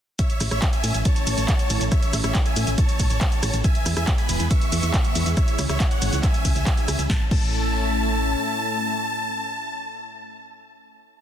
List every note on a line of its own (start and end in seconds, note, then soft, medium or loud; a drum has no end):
0.19 3.61 E3 medium
0.19 3.61 A3 medium
0.19 3.61 C#4 loud
0.19 0.44 C#5 medium
0.19 0.44 E5 loud
0.19 kick loud
0.19 closed hi-hat loud
0.19 shaker soft
0.30 closed hi-hat medium
0.30 shaker soft
0.40 0.49 A1 loud
0.40 cross-stick medium
0.40 open hi-hat loud
0.40 ride medium
0.40 shaker medium
0.51 0.60 A1 medium
0.51 0.68 C#5 medium
0.51 0.68 E5 medium
0.51 cross-stick medium
0.51 closed hi-hat medium
0.51 shaker soft
0.62 kick loud
0.62 clap loud
0.62 closed hi-hat medium
0.62 shaker soft
0.73 0.98 E5 medium
0.73 0.98 G#5 loud
0.73 closed hi-hat medium
0.73 shaker soft
0.84 0.92 A2 medium
0.84 open hi-hat medium
0.84 ride medium
0.84 shaker medium
0.94 1.03 A1 medium
0.94 closed hi-hat medium
0.94 shaker soft
1.05 1.83 C#5 medium
1.05 1.83 A5 loud
1.05 kick loud
1.05 closed hi-hat loud
1.05 shaker soft
1.16 closed hi-hat medium
1.16 shaker soft
1.27 1.35 A1 medium
1.27 open hi-hat loud
1.27 ride medium
1.27 shaker medium
1.38 1.46 A1 medium
1.38 closed hi-hat medium
1.38 shaker soft
1.48 kick loud
1.48 clap loud
1.48 closed hi-hat loud
1.48 shaker soft
1.59 closed hi-hat medium
1.59 shaker soft
1.70 1.79 A1 loud
1.70 open hi-hat medium
1.70 ride medium
1.70 shaker medium
1.81 1.89 A1 medium
1.81 closed hi-hat medium
1.81 shaker soft
1.92 2.17 C#5 medium
1.92 2.17 E5 loud
1.92 kick loud
1.92 cross-stick medium
1.92 closed hi-hat medium
1.92 shaker soft
2.03 closed hi-hat medium
2.03 shaker soft
2.13 2.22 A1 loud
2.13 cross-stick medium
2.13 open hi-hat loud
2.13 ride medium
2.13 shaker medium
2.24 2.32 A1 medium
2.24 2.41 C#5 medium
2.24 2.41 E5 loud
2.24 cross-stick medium
2.24 closed hi-hat medium
2.24 shaker soft
2.35 kick loud
2.35 clap loud
2.35 closed hi-hat medium
2.35 shaker soft
2.46 2.71 E5 medium
2.46 2.71 G#5 loud
2.46 closed hi-hat medium
2.46 shaker soft
2.56 2.65 A2 medium
2.56 open hi-hat loud
2.56 ride medium
2.56 shaker medium
2.67 2.76 A1 medium
2.67 closed hi-hat medium
2.67 shaker soft
2.78 3.56 C#5 medium
2.78 3.56 A5 loud
2.78 kick loud
2.78 closed hi-hat loud
2.78 shaker soft
2.89 closed hi-hat medium
2.89 shaker soft
3.00 3.08 A1 loud
3.00 kick medium
3.00 open hi-hat loud
3.00 ride medium
3.00 shaker medium
3.10 3.19 A1 medium
3.10 closed hi-hat medium
3.10 shaker soft
3.21 kick loud
3.21 clap loud
3.21 closed hi-hat medium
3.21 shaker soft
3.32 closed hi-hat medium
3.32 shaker soft
3.43 3.51 A1 loud
3.43 cross-stick medium
3.43 open hi-hat loud
3.43 ride medium
3.43 shaker medium
3.53 3.62 A1 medium
3.53 closed hi-hat medium
3.53 shaker soft
3.64 7.06 E3 medium
3.64 7.06 G#3 medium
3.64 5.35 B3 loud
3.64 3.89 E5 medium
3.64 3.89 G#5 loud
3.64 kick loud
3.64 closed hi-hat medium
3.64 shaker soft
3.75 closed hi-hat medium
3.75 shaker soft
3.86 3.94 E2 loud
3.86 cross-stick medium
3.86 open hi-hat loud
3.86 ride medium
3.86 shaker medium
3.97 4.05 E2 medium
3.97 4.13 E5 medium
3.97 4.13 G#5 medium
3.97 cross-stick medium
3.97 closed hi-hat medium
3.97 shaker soft
4.07 kick loud
4.07 clap loud
4.07 closed hi-hat medium
4.07 shaker soft
4.18 4.43 G#5 medium
4.18 4.43 B5 loud
4.18 closed hi-hat medium
4.18 shaker soft
4.29 4.38 E1 medium
4.29 open hi-hat loud
4.29 ride medium
4.29 shaker medium
4.40 4.48 E2 medium
4.40 closed hi-hat medium
4.40 shaker soft
4.51 5.28 E5 medium
4.51 5.28 C#6 loud
4.51 kick loud
4.51 closed hi-hat loud
4.51 shaker soft
4.61 closed hi-hat medium
4.61 shaker soft
4.72 4.81 E2 loud
4.72 open hi-hat loud
4.72 ride medium
4.72 shaker medium
4.83 4.91 E2 medium
4.83 closed hi-hat medium
4.83 shaker soft
4.94 kick loud
4.94 clap loud
4.94 closed hi-hat medium
4.94 shaker soft
5.05 closed hi-hat medium
5.05 shaker soft
5.15 5.24 E2 loud
5.15 open hi-hat loud
5.15 ride medium
5.15 shaker medium
5.26 5.35 E2 medium
5.26 closed hi-hat medium
5.26 shaker soft
5.37 7.08 C#4 medium
5.37 5.62 C#5 medium
5.37 5.62 E5 loud
5.37 kick loud
5.37 cross-stick medium
5.37 closed hi-hat medium
5.37 shaker soft
5.48 closed hi-hat medium
5.48 shaker soft
5.59 5.67 C#2 loud
5.59 cross-stick medium
5.59 open hi-hat loud
5.59 ride medium
5.59 shaker medium
5.69 5.78 C#2 medium
5.69 5.86 C#5 medium
5.69 5.86 E5 medium
5.69 cross-stick medium
5.69 closed hi-hat medium
5.69 shaker soft
5.80 kick loud
5.80 clap loud
5.80 closed hi-hat medium
5.80 shaker soft
5.91 6.16 C#5 medium
5.91 6.16 F#5 loud
5.91 closed hi-hat medium
5.91 shaker soft
6.02 6.10 G#1 loud
6.02 open hi-hat medium
6.02 ride medium
6.02 shaker medium
6.13 6.21 C#2 medium
6.13 closed hi-hat medium
6.13 shaker soft
6.23 7.01 E5 medium
6.23 7.01 G#5 loud
6.23 kick loud
6.23 clap medium
6.23 closed hi-hat medium
6.23 shaker soft
6.34 closed hi-hat medium
6.34 shaker soft
6.45 6.53 C#2 medium
6.45 kick medium
6.45 open hi-hat loud
6.45 ride medium
6.45 shaker medium
6.56 6.64 C#2 medium
6.56 closed hi-hat medium
6.56 shaker soft
6.67 kick loud
6.67 clap loud
6.67 closed hi-hat medium
6.67 shaker soft
6.77 closed hi-hat soft
6.77 shaker soft
6.88 6.97 C#2 loud
6.88 cross-stick medium
6.88 open hi-hat loud
6.88 ride medium
6.88 shaker medium
6.99 7.07 C#2 medium
6.99 closed hi-hat medium
6.99 shaker soft
7.10 7.22 A1 loud
7.10 10.23 A2 medium
7.10 10.23 A3 medium
7.10 10.23 C#4 medium
7.10 10.23 E4 medium
7.10 10.23 E5 loud
7.10 7.22 A5 loud
7.10 kick loud
7.10 snare medium
7.31 8.35 A1 loud
7.31 10.45 A5 loud
7.31 kick loud
7.31 crash medium